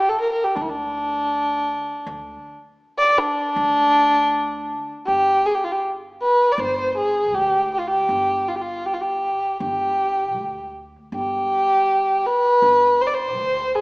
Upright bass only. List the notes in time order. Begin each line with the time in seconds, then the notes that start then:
0.56 D2
2.06 D2
3.56 D2
5.08 G1
6.58 G1
7.34 D2
8.09 G1
9.60 G1
10.36 D2
11.12 G1
12.62 G1
13.37 D2